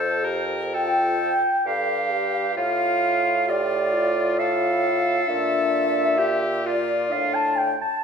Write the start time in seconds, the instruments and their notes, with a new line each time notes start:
Already playing: bassoon F2, french horn A4, oboe A4, clarinet C5, flute C5
0.23 french horn G4, oboe A#4
0.74 french horn F4, oboe A4, clarinet G5, flute G5
1.66 bassoon G2, oboe G4, french horn A4, clarinet F5, flute F5
2.10 french horn G4
2.55 bassoon A2, french horn F4, oboe F4, flute F5, clarinet F5
3.48 oboe F4, french horn G4, clarinet D5, flute D5
3.93 french horn F4
4.39 oboe A4, clarinet F5, flute F5
5.27 bassoon A#2, french horn D4, clarinet E5, flute E5
6.18 french horn G4, oboe G4
6.65 french horn F4, oboe F4, clarinet D5, flute D5
7.11 bassoon A2, french horn D4, clarinet F5, flute F5
7.34 clarinet A5, flute A5
7.56 flute G5, clarinet G5
7.81 clarinet A5, flute A5